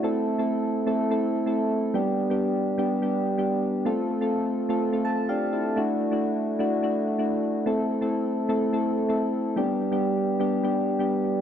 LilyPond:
\new Staff \with { instrumentName = "Synth keys" } { \time 4/4 \key g \major \tempo 4 = 126 << { r1 | r1 | r2 r8 a''8 <d' g' f''>8 <e' a'>8~ | <e' a'>8 r2. r8 |
r1 | r1 | } \\ { <a c' e' a'>8 r16 <a c' e' a'>8. r16 <a c' e' a'>16 r16 <a c' e' a'>8 r16 <a c' e' a'>8. r16 | <g b d' g'>8 r16 <g b d' g'>8. r16 <g b d' g'>16 r16 <g b d' g'>8 r16 <g b d' g'>8. r16 | <a c' f' a'>8 r16 <a c' f' a'>8. r16 <a c' f' a'>16 r16 <a c' f' a'>8 r4 r16 | <a d' e' fis'>8 r16 <a d' e' fis'>8. r16 <a d' e' fis'>16 r16 <a d' e' fis'>8 r16 <a d' e' fis'>8. r16 |
<a c' e' a'>8 r16 <a c' e' a'>8. r16 <a c' e' a'>16 r16 <a c' e' a'>8 r16 <a c' e' a'>8. r16 | <g b d' g'>8 r16 <g b d' g'>8. r16 <g b d' g'>16 r16 <g b d' g'>8 r16 <g b d' g'>8. r16 | } >> }